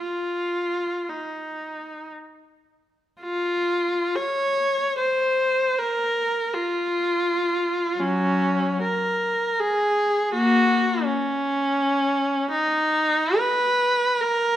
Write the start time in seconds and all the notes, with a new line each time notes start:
0.02 F4
1.09 D#4
3.21 F4
4.15 C#5
4.99 C5
5.78 A#4
6.54 F4
7.99 F#3 C#4
8.83 A#4
9.60 G#4
10.34 A#3 F#4
11.04 C#4
12.51 D#4
13.38 B4
14.21 A#4